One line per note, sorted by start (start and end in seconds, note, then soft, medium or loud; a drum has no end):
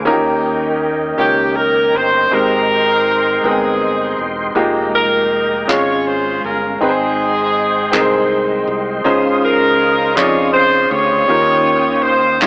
0.00 2.27 A#4 medium
0.05 1.15 D#2 medium
0.05 1.15 D#3 medium
0.05 0.98 A#3 medium
0.05 0.98 C#4 medium
0.05 0.99 D#4 medium
0.05 0.13 F4 medium
0.05 0.99 A#4 medium
0.05 4.52 D#5 medium
0.05 2.29 G5 medium
0.13 1.02 G4 medium
1.18 1.90 C#2 medium
1.18 2.10 A#3 medium
1.18 2.11 C#4 medium
1.18 2.11 D#4 medium
1.18 1.54 G4 medium
1.18 2.11 G4 medium
1.18 2.11 C#5 medium
1.56 1.94 A#4 medium
1.93 2.28 G1 medium
1.93 2.32 C5 medium
2.31 3.40 G#1 medium
2.31 3.40 G#2 medium
2.31 4.54 G#3 medium
2.31 3.24 G#3 medium
2.31 3.24 C4 medium
2.31 3.24 D#4 medium
2.31 3.41 D#4 medium
2.31 3.24 G4 medium
2.31 3.41 G4 medium
2.31 3.45 A#4 loud
2.31 3.24 C5 medium
2.31 4.54 G5 medium
2.31 4.54 C6 medium
3.44 4.15 G1 medium
3.44 4.36 G#3 medium
3.44 3.51 B3 soft
3.44 4.53 C4 medium
3.44 4.36 D#4 medium
3.44 4.53 D#4 medium
3.44 4.30 G#4 medium
3.44 4.37 A#4 medium
3.44 4.36 G5 medium
3.51 4.39 C4 medium
4.19 4.53 E1 medium
4.55 5.64 F1 medium
4.55 5.48 G#3 medium
4.55 9.02 G#3 medium
4.55 5.48 A#3 medium
4.55 5.48 D#4 medium
4.55 5.48 F4 medium
4.55 5.49 G4 medium
4.55 5.68 D#5 medium
4.55 5.68 G5 medium
4.55 5.68 A#5 medium
4.95 5.66 D#4 medium
4.95 5.65 G4 medium
4.95 5.65 A#4 medium
5.67 6.40 G#1 medium
5.67 6.60 G#3 medium
5.67 6.60 C#4 medium
5.67 6.80 C#4 soft
5.67 6.60 F4 medium
5.67 6.78 F4 medium
5.67 6.61 G#4 medium
5.67 6.78 G#4 medium
5.67 6.07 C#5 medium
5.67 6.80 F5 medium
5.67 6.61 F5 medium
5.67 clap medium
6.08 6.45 C5 medium
6.44 6.78 G1 medium
6.44 6.79 A#4 medium
6.81 7.89 G#1 medium
6.81 7.90 G#2 medium
6.81 7.73 C4 medium
6.81 8.65 C4 medium
6.81 7.73 D#4 medium
6.81 8.65 D#4 medium
6.81 7.73 G#4 medium
6.81 8.69 G#4 medium
6.81 6.88 B4 medium
6.81 9.03 D#5 medium
6.81 9.03 G5 soft
6.81 7.73 G5 medium
6.81 11.26 C6 medium
6.89 7.77 C5 medium
7.92 8.64 C2 medium
7.92 8.84 C4 medium
7.92 8.85 D#4 medium
7.92 8.85 G#4 medium
7.92 8.00 A#4 medium
7.92 8.85 G5 medium
7.92 clap medium
8.01 8.89 C5 medium
8.67 9.02 C2 medium
9.04 10.13 C#2 loud
9.04 10.13 C#3 medium
9.04 9.97 C#4 medium
9.04 12.47 C#4 medium
9.04 9.97 D#4 medium
9.04 9.97 F4 medium
9.04 9.97 G#4 medium
9.04 9.97 C5 medium
9.04 12.47 F5 medium
9.04 12.47 D#6 medium
9.44 10.52 D#4 medium
9.44 10.52 F4 medium
9.44 10.14 A#4 medium
10.16 10.88 F2 medium
10.16 11.09 C#4 medium
10.16 11.09 D#4 medium
10.16 11.09 F4 medium
10.16 11.09 G#4 medium
10.16 10.54 C#5 loud
10.16 10.24 D5 medium
10.16 clap medium
10.24 11.13 D#5 medium
10.54 10.89 C5 medium
10.90 11.26 D2 medium
10.90 12.01 F4 medium
10.90 12.01 G4 medium
10.90 12.04 C#5 loud
11.28 12.38 D#2 medium
11.28 12.38 D#3 medium
11.28 12.21 C#4 medium
11.28 12.22 D#4 medium
11.28 12.22 F4 medium
11.28 12.22 G4 medium
11.28 12.22 A#4 medium
11.28 12.47 G5 medium
12.03 12.41 C5 medium
12.41 12.47 G2 medium
12.41 12.47 C#4 medium
12.41 12.47 D#4 medium
12.41 12.47 F4 medium
12.41 12.47 G4 medium
12.41 12.47 C#5 medium
12.41 clap medium